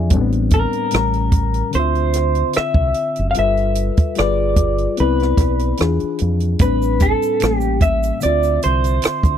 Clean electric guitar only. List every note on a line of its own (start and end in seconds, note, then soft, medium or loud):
0.54 1.75 A#4 medium
1.75 2.56 C5 medium
2.57 3.30 E5 medium
3.31 3.36 F5 medium
3.39 4.18 E5 medium
4.18 5.00 D5 medium
5.00 6.17 B4 medium
6.61 7.02 B4 medium
7.02 7.57 A4 medium
7.57 7.79 G4 medium
7.82 8.23 E5 medium
8.23 8.63 D5 medium
8.64 9.38 C5 medium